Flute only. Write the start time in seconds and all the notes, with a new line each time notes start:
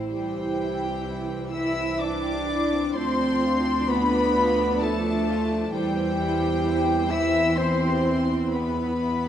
0.11 G4
1.53 E5
2.00 D5
2.96 C5
3.88 B4
4.82 A4
5.73 G4
7.11 E5
7.58 C5
8.52 B4